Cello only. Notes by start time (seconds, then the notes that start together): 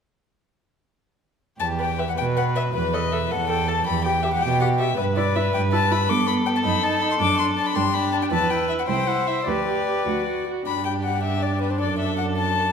1.60 E2
2.17 B2
2.74 E2
3.31 E2
3.86 E2
4.42 B2
4.98 G2
5.54 G2
6.09 G2
6.65 F#2
7.20 F#2
7.75 G2
8.31 E2
8.89 C2
9.47 D2
10.06 D2
10.67 G2
11.81 F#2